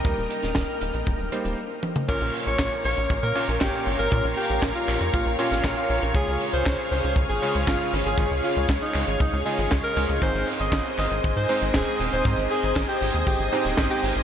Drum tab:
CC |----------------|x---------------|----------------|----------------|
HH |xxxxxxxxxxxx----|xxoxxxoxxxoxxxox|xxoxxxoxxxoxxxox|xxoxxxoxxxoxxxox|
CP |----------------|----x-------x---|----x-x-----x---|----x-------x---|
SD |---oo-----------|----o-------o---|----o------oo---|----o-------o---|
T1 |--------------o-|----------------|----------------|----------------|
T2 |---------------o|----------------|----------------|----------------|
BD |o---o---o-------|o---o---o---o---|o---o---o---o---|o---o---o---o---|

CC |----------------|----------------|----------------|
HH |xxoxxxoxxxoxxxox|xxoxxxoxxxoxxxox|xxoxxxoxxxoxxxox|
CP |----x-x-----x---|----x-x-----x---|----x-------x---|
SD |----o------oo---|----o-------o---|----o------oo---|
T1 |----------------|----------------|----------------|
T2 |----------------|----------------|----------------|
BD |o---o---o---o---|o---o---o---o---|o---o---o---o---|